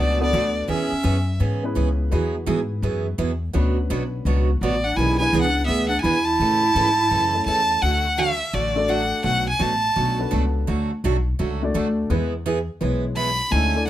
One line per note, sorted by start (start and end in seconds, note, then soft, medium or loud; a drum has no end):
0.00 0.32 C#2 medium
0.00 0.20 B2 medium
0.00 0.20 F#3 medium
0.00 0.20 A3 medium
0.00 0.20 B3 medium
0.00 0.20 D4 medium
0.00 0.20 F#4 medium
0.00 0.20 D5 medium
0.20 0.66 B3 medium
0.20 0.56 B3 medium
0.20 0.66 D4 medium
0.20 0.66 F#4 medium
0.20 0.67 A4 medium
0.20 0.67 B4 medium
0.20 0.67 D5 medium
0.33 0.68 D2 loud
0.33 0.45 B2 medium
0.33 0.45 F#3 medium
0.33 0.45 A3 medium
0.33 0.45 D4 medium
0.33 0.46 F#4 medium
0.68 0.91 E2 medium
0.68 0.91 E3 medium
0.68 0.91 B3 medium
0.68 0.91 C#4 medium
0.68 1.37 C#4 medium
0.68 0.91 G#4 medium
0.68 1.38 E5 medium
0.92 muted upright bass stroke soft
1.03 1.39 F#2 medium
1.03 1.16 E3 medium
1.03 1.16 B3 medium
1.03 1.16 C#4 medium
1.03 1.16 G#4 medium
1.40 1.75 G#2 medium
1.40 1.63 E3 medium
1.40 1.63 B3 medium
1.40 1.63 C#4 medium
1.40 1.63 G#4 medium
1.63 2.09 B3 medium
1.63 2.09 C#4 medium
1.63 2.09 E4 medium
1.63 2.10 G#4 medium
1.63 2.10 B4 medium
1.75 2.11 C#2 medium
1.75 1.88 E3 medium
1.75 1.88 B3 medium
1.75 1.88 C#4 medium
1.75 1.88 G#4 medium
2.10 2.46 E2 medium
2.10 2.34 E3 medium
2.10 2.34 F#3 medium
2.10 3.11 B3 medium
2.10 2.35 B3 medium
2.10 3.11 E4 medium
2.10 2.35 E4 medium
2.10 3.11 F#4 medium
2.10 3.11 G#4 medium
2.10 2.35 G#4 medium
2.10 3.12 B4 medium
2.46 2.82 G#2 medium
2.46 2.59 E3 medium
2.46 2.59 F#3 medium
2.46 2.59 B3 medium
2.46 2.59 E4 medium
2.46 2.59 G#4 medium
2.82 3.18 F#2 medium
2.82 3.06 E3 medium
2.82 3.06 F#3 medium
2.82 3.06 B3 medium
2.82 3.06 E4 medium
2.82 3.06 G#4 medium
3.18 3.53 E2 medium
3.18 3.30 E3 medium
3.18 3.31 F#3 medium
3.18 3.31 B3 medium
3.18 3.31 E4 medium
3.18 3.31 G#4 medium
3.53 3.89 D2 medium
3.53 3.77 B2 medium
3.53 3.76 F#3 medium
3.53 4.54 B3 medium
3.53 3.77 B3 medium
3.53 4.54 C#4 medium
3.53 3.77 D4 medium
3.53 4.55 D4 medium
3.53 3.77 F#4 medium
3.53 4.54 F#4 medium
3.53 4.55 B4 medium
3.53 3.77 C#5 medium
3.90 4.25 B1 medium
3.90 4.02 B2 medium
3.90 4.02 F#3 medium
3.90 4.02 B3 medium
3.90 4.03 D4 medium
3.90 4.03 F#4 medium
3.90 4.02 C#5 medium
4.25 4.60 C#2 medium
4.25 4.48 B2 medium
4.25 4.49 F#3 medium
4.25 4.49 B3 medium
4.25 4.49 D4 medium
4.25 4.49 F#4 medium
4.25 4.49 C#5 medium
4.61 4.96 A1 medium
4.61 4.74 B2 medium
4.61 4.74 F#3 medium
4.61 4.87 B3 medium
4.61 4.74 B3 medium
4.61 4.75 D4 medium
4.61 4.74 F#4 medium
4.61 4.75 C#5 medium
4.61 4.86 D5 medium
4.84 4.97 D4 medium
4.84 4.98 F#5 medium
4.96 5.32 B1 medium
4.96 5.20 E3 medium
4.96 5.18 A#3 medium
4.96 5.20 B3 medium
4.96 5.19 C#4 medium
4.96 5.21 D4 medium
4.96 5.19 D#4 medium
4.96 5.18 E4 medium
4.96 5.19 G4 medium
4.96 5.21 G#4 medium
4.96 5.19 A#4 medium
4.96 5.18 G#5 medium
5.19 5.97 B3 medium
5.19 5.97 D4 medium
5.19 5.42 E4 medium
5.19 5.97 E4 medium
5.19 5.98 G#4 medium
5.19 5.98 B4 medium
5.19 5.41 G#5 loud
5.33 5.68 C#2 medium
5.33 5.45 E3 medium
5.33 5.45 B3 medium
5.33 5.46 D4 medium
5.33 5.46 G#4 medium
5.42 5.65 D4 medium
5.42 5.66 F#5 medium
5.65 6.04 D2 medium
5.65 5.91 E3 medium
5.65 5.88 B3 medium
5.65 5.91 B3 medium
5.65 5.91 D4 medium
5.65 5.91 G#4 medium
5.65 5.89 E5 medium
5.89 6.02 D4 medium
5.89 6.01 F#5 medium
6.02 6.39 E2 medium
6.02 6.16 E3 medium
6.02 6.16 B3 medium
6.02 6.17 D4 medium
6.02 6.25 E4 medium
6.02 6.17 G#4 medium
6.02 6.26 G#5 loud
6.24 7.69 E4 loud
6.24 7.46 A5 loud
6.40 6.75 A2 medium
6.40 6.62 C#3 medium
6.40 6.63 E3 medium
6.40 6.63 A3 medium
6.40 6.63 C#4 medium
6.40 6.63 A4 medium
6.75 7.10 G#2 medium
6.75 6.88 C#3 medium
6.75 6.88 E3 medium
6.75 6.88 A3 medium
6.75 6.88 C#4 medium
6.75 6.88 A4 medium
7.10 7.46 F#2 medium
7.10 7.33 C#3 medium
7.10 7.34 E3 medium
7.10 7.34 A3 medium
7.10 7.34 C#4 medium
7.10 7.34 A4 medium
7.34 7.80 A3 medium
7.34 7.80 C#4 medium
7.34 7.80 E4 medium
7.34 7.81 A4 medium
7.34 7.81 C#5 medium
7.46 7.81 E2 medium
7.46 7.59 C#3 medium
7.46 7.59 E3 medium
7.46 7.59 A3 medium
7.46 7.59 C#4 medium
7.46 7.59 A4 medium
7.46 7.84 A5 loud
7.82 8.40 D2 medium
7.82 8.05 D3 medium
7.82 8.06 F#3 medium
7.82 8.05 A3 medium
7.82 8.06 D4 medium
7.82 8.06 F#4 medium
7.82 8.21 F#5 loud
8.17 8.30 D3 medium
8.17 8.30 F#3 medium
8.17 8.30 A3 medium
8.17 8.30 D4 medium
8.17 8.30 F#4 medium
8.17 8.55 E5 loud
8.53 9.11 A1 medium
8.53 8.76 D3 medium
8.53 8.76 F#3 medium
8.53 8.76 A3 medium
8.53 8.76 D4 medium
8.53 8.76 F#4 medium
8.53 8.90 D5 medium
8.75 9.22 A3 medium
8.75 9.22 D4 medium
8.75 9.22 F#4 medium
8.75 9.22 A4 medium
8.75 9.23 D5 medium
8.88 9.01 D3 medium
8.88 9.01 F#3 medium
8.88 9.01 A3 medium
8.88 9.01 D4 medium
8.88 9.01 F#4 medium
8.88 9.25 F#5 loud
9.23 9.53 B1 medium
9.23 9.47 B2 medium
9.23 9.47 F#3 medium
9.23 9.47 A3 medium
9.23 9.47 D4 medium
9.23 9.47 F#4 medium
9.23 9.47 F#5 medium
9.50 9.64 G#5 medium
9.59 9.91 A1 medium
9.59 9.72 B2 medium
9.59 9.72 F#3 medium
9.59 9.72 A3 medium
9.59 9.72 D4 medium
9.59 9.72 F#4 medium
9.59 10.33 A5 medium
9.96 10.27 B1 medium
9.96 10.19 B2 medium
9.96 10.19 F#3 medium
9.96 10.19 A3 medium
9.96 10.19 D4 medium
9.96 10.19 F#4 medium
10.19 10.65 B3 medium
10.19 10.65 D4 medium
10.19 10.65 F#4 medium
10.19 10.65 A4 medium
10.19 10.66 B4 medium
10.31 10.63 C#2 medium
10.31 10.43 B2 medium
10.31 10.43 F#3 medium
10.31 10.44 A3 medium
10.31 10.43 D4 medium
10.31 10.44 F#4 medium
10.67 10.97 D2 medium
10.67 10.90 D3 medium
10.67 10.90 F#3 medium
10.67 10.90 A3 medium
10.67 10.90 D4 medium
10.67 10.90 F#4 medium
11.04 11.34 B1 medium
11.04 11.16 D3 medium
11.04 11.16 F#3 medium
11.04 11.16 A3 medium
11.04 11.16 D4 medium
11.04 11.16 F#4 medium
11.39 11.70 C#2 medium
11.39 11.61 D3 medium
11.39 11.61 F#3 medium
11.39 11.61 A3 medium
11.39 11.62 D4 medium
11.39 11.62 F#4 medium
11.62 12.08 A3 medium
11.62 12.08 D4 medium
11.62 12.08 F#4 medium
11.62 12.08 A4 medium
11.62 12.09 D5 medium
11.74 12.05 D2 medium
11.74 11.86 D3 medium
11.74 11.87 F#3 medium
11.74 11.87 A3 medium
11.74 11.87 D4 medium
11.74 11.87 F#4 medium
12.10 12.67 E2 medium
12.10 12.33 E3 medium
12.10 12.31 G#3 medium
12.10 12.33 B3 medium
12.10 12.32 B3 medium
12.10 12.33 E4 medium
12.10 12.32 E4 medium
12.10 12.33 G#4 medium
12.10 12.32 G#4 medium
12.10 12.32 B4 medium
12.46 12.58 E3 medium
12.46 12.58 B3 medium
12.46 12.58 E4 medium
12.46 12.58 G#4 medium
12.80 13.39 B1 medium
12.80 13.03 E3 medium
12.80 13.35 G#3 medium
12.80 13.04 B3 medium
12.80 13.36 B3 medium
12.80 13.04 E4 medium
12.80 13.36 E4 medium
12.80 13.36 G#4 medium
12.80 13.04 G#4 medium
12.80 13.36 C#5 medium
13.16 13.28 E3 medium
13.16 13.29 B3 medium
13.16 13.29 E4 medium
13.16 13.29 G#4 medium
13.16 13.53 B5 loud
13.51 13.90 D2 medium
13.51 13.75 D3 medium
13.51 13.73 G#3 medium
13.51 13.75 A3 medium
13.51 13.73 C#4 medium
13.51 13.75 D4 medium
13.51 13.74 D#4 medium
13.51 13.75 E4 medium
13.51 13.74 G#4 medium
13.51 13.75 A4 medium
13.51 13.74 C#5 medium
13.51 13.87 G#5 medium
13.75 13.90 A3 medium
13.75 13.90 D4 medium
13.75 13.90 E4 medium
13.75 13.90 A4 medium
13.75 13.90 D5 medium